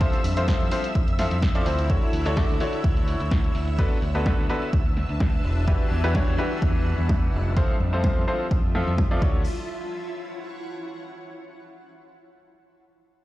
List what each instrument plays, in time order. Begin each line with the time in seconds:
Already playing: ambient pad G3 D4, analog synth pad E5 E6
0.01 upright piano F3 C4 E4 F4 A4 C5, ambient pad E4, kick
0.13 closed hi-hat
0.24 fingered electric bass F2, open hi-hat
0.37 upright piano F3 C4 E4 F4 A4 C5, closed hi-hat
0.48 upright piano F3 C4 E4 F4 A4 C5, kick, snare
0.56 ambient pad A4
0.60 fingered electric bass F2, closed hi-hat
0.71 upright piano F3 C4 E4 F4 A4 C5, open hi-hat
0.84 closed hi-hat
0.95 fingered electric bass F2, kick
1.08 closed hi-hat
1.19 upright piano F3 C4 E4 F4 A4 E5, snare, open hi-hat
1.31 fingered electric bass F2, closed hi-hat
1.42 kick, snare
1.55 upright piano F3 C4 E4 F4 A4 D5, closed hi-hat
1.66 fingered electric bass D2, upright piano C4 E4 F4 A4 C5, open hi-hat
1.79 closed hi-hat
1.90 upright piano D3 D4 E4 F#4 A4 C#5, kick
2.02 closed hi-hat
2.13 fingered electric bass D2, open hi-hat
2.20 ambient pad F#5
2.26 upright piano D3 D4 E4 F#4 A4 C#5, closed hi-hat
2.37 upright piano D3 D4 E4 F#4 A4 D5, ambient pad C#5, kick, snare
2.49 fingered electric bass D2, closed hi-hat
2.60 upright piano D3 D4 E4 F#4 A4 C#5, open hi-hat
2.73 closed hi-hat
2.84 fingered electric bass D2, kick
2.97 closed hi-hat
3.08 open hi-hat
3.20 fingered electric bass D2, closed hi-hat
3.31 kick, snare
3.44 closed hi-hat
3.55 fingered electric bass D2, ambient pad D4, open hi-hat
3.67 closed hi-hat
3.79 upright piano D3 B3 D4 F#4 A4 B4, ambient pad A5, kick
3.91 closed hi-hat
3.98 ambient pad B4, open hi-hat
4.02 fingered electric bass D2
4.15 upright piano D3 B3 D4 F#4 A4 B4, closed hi-hat
4.26 upright piano D3 B3 D4 F#4 A4 B4, kick, snare
4.38 fingered electric bass D2, closed hi-hat
4.49 upright piano D3 B3 D4 F#4 A4 B4, open hi-hat
4.62 closed hi-hat
4.73 fingered electric bass D2, kick
4.86 closed hi-hat
4.97 snare, open hi-hat
5.09 fingered electric bass D2, closed hi-hat
5.20 kick, snare
5.33 closed hi-hat
5.44 fingered electric bass E1, open hi-hat
5.56 ambient pad G3, closed hi-hat
5.68 upright piano E3 D4 E4 F#4 G4 B4, ambient pad F#5, kick
5.80 closed hi-hat
5.91 fingered electric bass E2, open hi-hat
6.04 upright piano E3 D4 E4 F#4 G4 B4, closed hi-hat
6.15 upright piano E3 D4 E4 F#4 G4 C#5, kick, snare
6.27 fingered electric bass E2, closed hi-hat
6.38 upright piano E3 D4 E4 F#4 G4 B4, open hi-hat
6.51 closed hi-hat
6.62 fingered electric bass E2, kick
6.75 closed hi-hat
6.86 open hi-hat
6.98 fingered electric bass E2, closed hi-hat
7.09 kick, snare
7.22 closed hi-hat
7.33 fingered electric bass F1, open hi-hat
7.46 closed hi-hat
7.56 upright piano F3 C4 E4 F4 A4 C5, ambient pad F4, kick
7.80 fingered electric bass F2, open hi-hat
7.93 upright piano F3 C4 E4 F4 A4 C5, closed hi-hat
8.01 upright piano F3 C4 E4 F4 A4 C5, ambient pad E5, kick, snare
8.16 fingered electric bass F2
8.27 upright piano F3 C4 E4 F4 A4 C5, open hi-hat
8.40 closed hi-hat
8.51 fingered electric bass F2, kick
8.64 closed hi-hat
8.75 upright piano F3 C4 E4 F4 A4 E5, snare
8.87 fingered electric bass F2
8.98 kick, snare
9.11 upright piano F3 C4 E4 F4 A4 D5
9.22 fingered electric bass D2, upright piano D4 E4 F#4 A4 C#5, ambient pad E4, kick
9.29 ambient pad C#5
9.60 ambient pad F#5